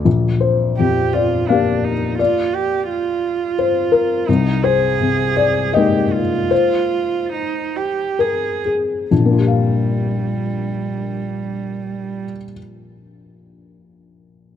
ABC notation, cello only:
X:1
M:3/4
L:1/8
Q:1/4=76
K:Bb
V:1 name="Cello"
z2 G F D E | F G F4 | E _A3 G F- | F2 E G _A z |
G,6- | G,6 |]